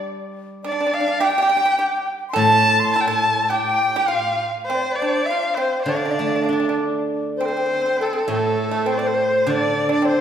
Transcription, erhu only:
0.67 0.95 D5 medium
0.94 1.25 F5 medium
1.24 2.08 G5 medium
2.37 2.89 A5 loud
2.92 3.02 A5 medium
3.00 3.08 G5 medium
3.06 3.45 A5 loud
3.45 4.09 G5 medium
3.45 3.50 A5 medium
4.07 4.52 F5 medium
4.65 4.97 C5 medium
4.95 5.27 D5 medium
5.26 5.55 F5 medium
5.54 5.82 C5 medium
5.82 6.73 D5 medium
7.43 8.04 C5 medium
8.02 8.30 A4 medium
8.32 8.94 A4 medium
8.92 8.99 C5 medium
8.98 9.08 D5 medium
9.07 9.51 C5 medium
9.50 9.92 D5 medium
9.93 10.05 D5 medium
10.07 10.21 C5 medium

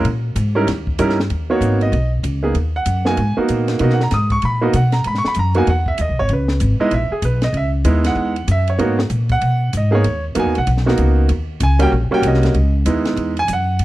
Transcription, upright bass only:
0.04 0.35 A#2 medium
0.36 0.66 G#2 loud
0.67 0.97 D#2 medium
0.99 1.29 G2 medium
1.30 1.60 D#2 medium
1.61 1.91 G#1 medium
1.92 2.22 B1 medium
2.23 2.54 C#2 medium
2.54 2.85 D#2 medium
2.86 3.16 F#2 medium
3.18 3.35 G#2 medium
3.38 muted upright bass stroke soft
3.50 3.79 A#2 medium
3.80 4.10 B2 medium
4.12 4.42 G#2 medium
4.43 4.73 A#2 medium
4.74 5.04 B2 medium
5.06 5.23 G#2 medium
5.25 muted upright bass stroke soft
5.36 5.66 F#2 medium
5.67 5.97 E2 medium
5.99 6.11 D#2 medium
6.09 6.19 B1 medium
6.20 6.29 G#1 medium
6.30 6.60 C#2 medium
6.61 6.79 G#1 medium
6.80 muted upright bass stroke soft
6.91 7.10 A#1 medium
7.11 muted upright bass stroke soft
7.22 7.52 B1 medium
7.53 7.84 C#2 medium
7.84 8.15 D#2 medium
8.15 8.46 E2 medium
8.48 8.78 F#2 medium
8.78 9.09 G#2 medium
9.10 9.40 A#2 medium
9.41 9.72 B2 medium
9.73 10.03 G#2 medium
10.04 10.35 D#2 medium
10.36 10.46 F#2 medium
10.46 10.56 D#2 medium
10.57 10.66 B1 medium
10.67 10.97 B1 medium
10.98 11.29 C#2 medium
11.29 11.60 D#2 medium
11.60 11.91 C#2 medium
11.92 12.10 A#1 medium
12.11 muted upright bass stroke soft
12.22 12.53 C2 medium
12.54 12.85 C#2 medium
12.86 13.16 D#2 medium
13.16 13.47 E2 medium
13.48 13.79 F#2 medium
13.80 13.85 G#2 medium

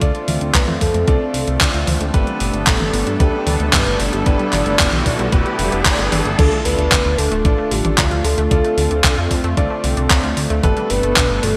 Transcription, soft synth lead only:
0.01 0.54 D5 loud
0.54 0.66 B4 loud
0.81 1.83 A4 loud
2.67 3.22 A4 loud
3.20 3.48 G4 loud
3.47 3.75 A4 medium
3.73 4.01 B4 loud
4.00 5.86 D5 loud
6.38 6.66 A4 loud
6.65 7.19 B4 loud
7.18 7.73 A4 loud
7.71 7.99 G4 loud
7.98 8.26 F4 loud
8.25 9.84 A4 loud
10.64 10.92 A4 loud
10.90 11.43 B4 loud
11.44 11.57 A4 loud

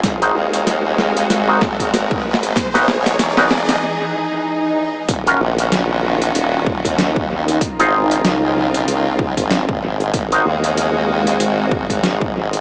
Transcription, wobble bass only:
0.04 0.33 G#1 medium
0.35 1.28 D#2 loud
1.30 1.77 G#1 loud
1.80 2.54 G#1 loud
2.74 3.17 B1 loud
3.19 3.62 E1 loud
3.62 3.80 D#1 loud
5.08 5.38 D#1 medium
5.40 6.33 A#1 loud
6.35 6.82 D#1 medium
6.85 7.59 D#2 loud
7.80 8.23 G#1 loud
8.25 8.68 C#2 medium
8.68 8.86 C2 medium
8.88 9.35 C#2 loud
9.37 9.66 G#1 loud
9.69 10.12 G#1 loud
10.14 10.43 G#1 loud
10.45 11.38 D#2 loud
11.40 11.87 G#1 medium
11.90 12.61 G#1 loud

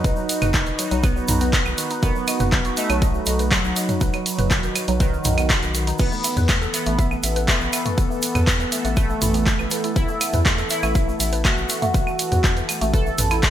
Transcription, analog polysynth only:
0.00 0.94 D#4 loud
1.03 1.93 B3 loud
2.03 2.67 B3 loud
2.77 3.42 A3 loud
3.51 4.90 F#3 loud
5.00 5.90 D#3 loud
5.99 6.64 B3 loud
6.74 7.38 B3 loud
7.48 8.87 B3 loud
8.97 9.86 A3 loud
9.96 10.61 E4 loud
10.70 11.35 E4 loud
11.45 12.84 F#4 loud
12.94 13.50 A4 loud

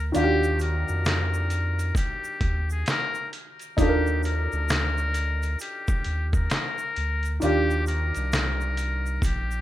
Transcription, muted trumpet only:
0.00 0.11 A#4 medium
0.16 0.57 G4 loud
0.61 1.93 A#4 medium
1.97 2.73 G4 medium
2.71 2.86 G#4 medium
2.88 3.29 A#4 loud
3.79 4.20 G4 loud
4.25 5.56 A#4 medium
5.61 6.30 G4 medium
6.35 7.38 A#4 medium
7.43 7.84 G4 loud
7.88 9.20 A#4 medium
9.25 9.61 G4 medium

